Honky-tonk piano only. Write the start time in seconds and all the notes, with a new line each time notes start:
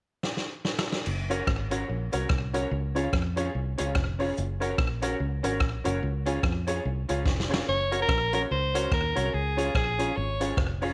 1.29 C#4 F#4 A#4 C#5
1.70 C#4 F#4 A#4 C#5
1.88 A#4 C#5
2.12 C#4 F#4 A#4 C#5
2.53 C#4 F#4 A#4 C#5
2.95 C#4 F4 G#4 C#5
3.36 C#4 F4 G#4 C#5
3.78 C#4 F4 G#4 C#5
4.19 C#4 F4 G#4 C#5
4.60 C#4 F#4 A#4 C#5
5.02 C#4 F#4 A#4 C#5
5.19 A#4 C#5
5.43 C#4 F#4 A#4 C#5
5.84 C#4 F#4 A#4 C#5
6.26 C#4 F4 G#4 C#5
6.67 C#4 F4 G#4 C#5
7.08 C#4 F4 G#4 C#5
7.49 C#4 F4 G#4 C#5
7.91 C#4 F#4 A#4 C#5
8.33 C#4 F#4 A#4 C#5
8.74 C#4 F#4 A#4 C#5
8.92 A#4 C#5
9.15 C#4 F#4 A#4 C#5
9.57 C#4 F4 G#4 C#5
9.98 C#4 F4 G#4 C#5
10.40 C#4 F4 G#4 C#5
10.82 C#4 F4 G#4 C#5